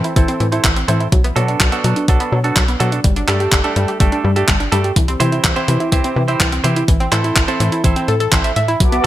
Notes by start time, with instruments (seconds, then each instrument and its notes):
Already playing: clean electric guitar C4 E4 A4 C5
0.04 synth arpeggio sound E4, closed hi-hat
0.16 analog synth bass A1, synth arpeggio sound E3, clean electric guitar C4 E4 A4 C5, kick, closed hi-hat
0.28 synth arpeggio sound C4, closed hi-hat
0.40 analog synth bass A2, synth arpeggio sound E3, closed hi-hat
0.52 clean electric guitar C4 E4 A4 C5, synth arpeggio sound E4, closed hi-hat
0.64 analog synth bass A1, synth arpeggio sound E3, kick, clap, closed hi-hat
0.76 synth arpeggio sound C4, closed hi-hat
0.88 analog synth bass A2, synth arpeggio sound E3, clean electric guitar C4 E4 A4 C5, closed hi-hat
1.00 synth arpeggio sound E4, closed hi-hat
1.12 analog synth bass B1, synth arpeggio sound F#3, kick, closed hi-hat
1.24 synth arpeggio sound B3, closed hi-hat
1.36 analog synth bass B2, synth arpeggio sound F#3, clean electric guitar B3 D4 F#4 A4, closed hi-hat
1.48 synth arpeggio sound D4, closed hi-hat
1.60 analog synth bass B1, synth arpeggio sound F#3, kick, clap, closed hi-hat
1.72 synth arpeggio sound B3, clean electric guitar B3 D4 F#4 A4, closed hi-hat
1.84 analog synth bass B2, synth arpeggio sound F#3, closed hi-hat
1.96 synth arpeggio sound D4, closed hi-hat
2.08 analog synth bass B1, synth arpeggio sound F#3, clean electric guitar B3 D4 F#4 A4, kick, closed hi-hat
2.20 synth arpeggio sound B3, closed hi-hat
2.32 analog synth bass B2, synth arpeggio sound F#3
2.44 clean electric guitar B3 D4 F#4 A4, synth arpeggio sound D4, closed hi-hat
2.56 analog synth bass B1, synth arpeggio sound F#3, kick, clap, closed hi-hat
2.68 synth arpeggio sound B3, closed hi-hat
2.80 analog synth bass B2, synth arpeggio sound F#3, clean electric guitar B3 D4 F#4 A4, closed hi-hat
2.92 synth arpeggio sound D4, closed hi-hat
3.04 analog synth bass G1, synth arpeggio sound G3, kick, closed hi-hat
3.16 synth arpeggio sound D4, closed hi-hat
3.28 analog synth bass G2, synth arpeggio sound G3, clean electric guitar A3 D4 G4 A4, clap, closed hi-hat
3.40 synth arpeggio sound G4, closed hi-hat
3.52 analog synth bass G1, synth arpeggio sound G3, kick, clap, closed hi-hat
3.64 clean electric guitar A3 D4 G4 A4, synth arpeggio sound D4, closed hi-hat
3.76 analog synth bass G2, synth arpeggio sound G3, closed hi-hat
3.88 synth arpeggio sound G4, closed hi-hat
4.00 analog synth bass G1, synth arpeggio sound G3, clean electric guitar A3 D4 G4 A4, kick, closed hi-hat
4.12 synth arpeggio sound D4, closed hi-hat
4.24 analog synth bass G2, synth arpeggio sound G3
4.36 clean electric guitar A3 D4 G4 A4, synth arpeggio sound G4, closed hi-hat
4.48 analog synth bass G1, synth arpeggio sound G3, kick, clap, closed hi-hat
4.60 synth arpeggio sound D4, closed hi-hat
4.72 analog synth bass G2, synth arpeggio sound G3, clean electric guitar A3 D4 G4 A4, closed hi-hat
4.84 synth arpeggio sound G4, closed hi-hat
4.96 analog synth bass C2, synth arpeggio sound E3, kick, closed hi-hat
5.08 synth arpeggio sound C4, closed hi-hat
5.20 analog synth bass C3, synth arpeggio sound E3, clean electric guitar C4 E4 G4 C5, closed hi-hat
5.32 synth arpeggio sound E4, closed hi-hat
5.44 analog synth bass C2, synth arpeggio sound E3, kick, clap, closed hi-hat
5.56 synth arpeggio sound C4, clean electric guitar C4 E4 G4 C5, closed hi-hat
5.68 analog synth bass C3, synth arpeggio sound E3, closed hi-hat
5.80 synth arpeggio sound E4, closed hi-hat
5.92 analog synth bass C2, synth arpeggio sound E3, clean electric guitar C4 E4 G4 C5, kick, closed hi-hat
6.04 synth arpeggio sound C4, closed hi-hat
6.16 analog synth bass C3, synth arpeggio sound E3
6.28 clean electric guitar C4 E4 G4 C5, synth arpeggio sound E4, closed hi-hat
6.40 analog synth bass C2, synth arpeggio sound E3, kick, clap, closed hi-hat
6.52 synth arpeggio sound C4, closed hi-hat
6.64 analog synth bass C3, synth arpeggio sound E3, clean electric guitar C4 E4 G4 C5, closed hi-hat
6.76 synth arpeggio sound E4, closed hi-hat
6.88 analog synth bass A1, synth arpeggio sound E3, kick, closed hi-hat
7.00 synth arpeggio sound C4, closed hi-hat
7.12 analog synth bass A2, synth arpeggio sound E3, clean electric guitar C4 E4 A4 C5, clap, closed hi-hat
7.24 synth arpeggio sound E4, closed hi-hat
7.36 analog synth bass A1, synth arpeggio sound E3, kick, clap, closed hi-hat
7.48 synth arpeggio sound C4, clean electric guitar C4 E4 A4 C5, closed hi-hat
7.60 analog synth bass A2, synth arpeggio sound E3, closed hi-hat
7.72 synth arpeggio sound E4, closed hi-hat
7.84 analog synth bass A1, synth arpeggio sound E3, clean electric guitar C4 E4 A4 C5, kick, closed hi-hat
7.96 synth arpeggio sound C4, closed hi-hat
8.08 analog synth bass A2, synth arpeggio sound A4, closed hi-hat
8.20 synth arpeggio sound A4, closed hi-hat
8.32 analog synth bass A1, synth arpeggio sound E3, clean electric guitar C4 E4 A4 C5, kick, clap, closed hi-hat
8.44 synth arpeggio sound E5, closed hi-hat
8.56 analog synth bass A2, synth arpeggio sound E5, closed hi-hat
8.68 synth arpeggio sound E4, closed hi-hat
8.80 analog synth bass B1, synth arpeggio sound F#3, analog synth pad F#4 B4 A5 D6, kick, closed hi-hat
8.92 synth arpeggio sound B3, closed hi-hat